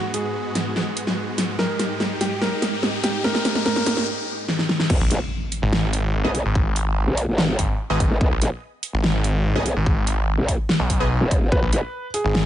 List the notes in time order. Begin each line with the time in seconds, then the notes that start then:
Already playing: G#2 G#3 B3 F#4, riser
0.14 G#4, closed hi-hat
0.55 snare, closed hi-hat
0.76 snare
0.97 closed hi-hat
1.07 snare
1.38 snare, closed hi-hat
1.59 D#4 G4 A#4, snare
1.79 snare, closed hi-hat
2.00 snare
2.21 G4, snare, closed hi-hat
2.41 A#4, snare
2.62 snare, closed hi-hat
2.83 snare
3.04 G4, snare, closed hi-hat
3.24 A#4, snare
3.35 snare
3.45 snare, closed hi-hat
3.55 snare
3.66 A#4, snare
3.76 snare
3.86 snare, closed hi-hat
3.97 snare
4.48 snare
4.59 snare
4.69 snare
4.80 snare
4.90 G#1, kick, crash, impact
5.00 A#1
5.11 F#1, closed hi-hat
5.52 closed hi-hat
5.62 G#1
5.73 snare
5.93 closed hi-hat
6.24 B1 B3 G#4 D#5
6.35 closed hi-hat
6.45 G#1
6.55 kick
6.76 G#1, closed hi-hat
7.07 B1
7.17 closed hi-hat
7.28 G#1
7.38 snare
7.59 G#1, kick, closed hi-hat
7.90 G#1 B3 G#4 D#5
8.00 kick, closed hi-hat
8.11 G#1
8.21 G#1, kick
8.31 A#1
8.42 F#1, closed hi-hat
8.83 closed hi-hat
8.93 G#1
9.04 snare
9.24 closed hi-hat
9.55 B1 B3 G#4 D#5
9.66 closed hi-hat
9.76 G#1
9.86 kick
10.07 G#1, closed hi-hat
10.38 B1
10.48 kick, closed hi-hat
10.69 snare
10.80 B1
10.90 kick, closed hi-hat
11.00 B3 G#4 D#5
11.21 D#1
11.31 kick, closed hi-hat
11.52 G#1 B4, kick
11.62 A#1
11.73 F#1, closed hi-hat
12.14 G#4, closed hi-hat
12.24 G#1
12.35 snare